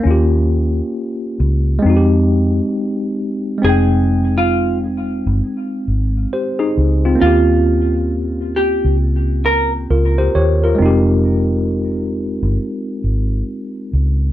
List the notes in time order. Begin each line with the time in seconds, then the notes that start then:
0.00 A#3 C#4
0.05 D#2 F4
0.11 G4
1.40 C#2
1.79 G#3 C4
1.85 F2 D#4
1.90 F#4
1.96 G4
3.58 G#3 C4
3.64 F1 D#4 G#4
3.69 G5
4.38 F4
5.26 G1
5.88 G#1
6.33 G4 C5
6.59 D#4 G#4
6.77 C#2
7.05 C4 F4
7.15 A#3 C#4
7.21 D#2 F4
7.26 G4
8.56 G4
8.84 C#2
9.46 A#4
9.90 C#2 F4 A#4
10.18 G4 C5
10.35 D#2 G4 C#5
10.64 F4 A#4
10.75 G#3 C4
10.80 F1 D#4
10.86 G4
12.42 G1
13.04 G#1
13.93 C#2